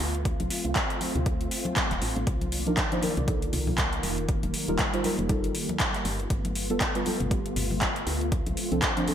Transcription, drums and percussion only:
0.00 open hi-hat
0.15 closed hi-hat
0.25 kick, closed hi-hat
0.40 closed hi-hat, high conga
0.50 open hi-hat
0.65 closed hi-hat
0.76 kick, clap, closed hi-hat
0.90 closed hi-hat
1.01 open hi-hat, high conga
1.16 closed hi-hat, low conga
1.26 kick, closed hi-hat
1.41 closed hi-hat
1.51 open hi-hat
1.65 closed hi-hat, high conga
1.76 kick, clap, closed hi-hat
1.91 clap, closed hi-hat
2.02 open hi-hat
2.16 closed hi-hat
2.27 kick, closed hi-hat
2.41 closed hi-hat, high conga
2.52 open hi-hat
2.67 closed hi-hat
2.77 kick, clap, closed hi-hat
2.92 closed hi-hat
3.02 open hi-hat, high conga
3.17 closed hi-hat, low conga
3.28 kick, closed hi-hat
3.42 closed hi-hat
3.53 open hi-hat, low conga
3.67 high conga, low conga
3.78 kick, clap, closed hi-hat
3.93 closed hi-hat
4.03 open hi-hat
4.18 closed hi-hat
4.29 kick, closed hi-hat
4.43 closed hi-hat, high conga
4.54 open hi-hat
4.79 kick, clap, closed hi-hat
4.94 closed hi-hat
5.04 open hi-hat, high conga
5.19 closed hi-hat
5.29 kick, closed hi-hat
5.44 closed hi-hat
5.55 open hi-hat
5.69 closed hi-hat, high conga
5.80 kick, clap, closed hi-hat
5.94 clap, closed hi-hat
6.05 open hi-hat
6.20 closed hi-hat
6.30 kick, closed hi-hat
6.45 closed hi-hat, high conga
6.55 open hi-hat
6.70 closed hi-hat
6.81 kick, clap, closed hi-hat
6.95 closed hi-hat
7.05 open hi-hat, high conga
7.20 closed hi-hat, low conga
7.31 kick, closed hi-hat
7.46 closed hi-hat
7.56 open hi-hat, low conga
7.71 high conga, low conga
7.81 kick, clap, closed hi-hat
7.96 closed hi-hat
8.07 open hi-hat
8.21 closed hi-hat
8.32 kick, closed hi-hat
8.47 closed hi-hat, high conga
8.57 open hi-hat
8.72 closed hi-hat
8.82 kick, clap, closed hi-hat
8.97 closed hi-hat
9.08 open hi-hat, high conga

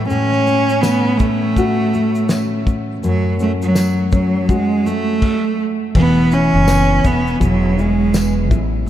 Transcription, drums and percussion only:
0.10 shaker
0.32 snare
0.47 shaker
0.69 shaker
0.83 snare, tambourine, shaker
1.19 kick, shaker
1.56 kick, shaker
1.94 shaker
2.15 shaker
2.29 snare, tambourine, shaker
2.67 kick, shaker
3.03 shaker
3.39 shaker
3.62 shaker
3.75 snare, tambourine, shaker
4.12 kick, shaker
4.49 kick, shaker
4.86 shaker
5.22 kick, crash
5.95 kick, crash
6.31 shaker
6.68 snare, tambourine, shaker
7.04 kick, shaker
7.27 shaker
7.41 kick, shaker
7.79 shaker
8.14 snare, tambourine, shaker
8.51 kick, shaker

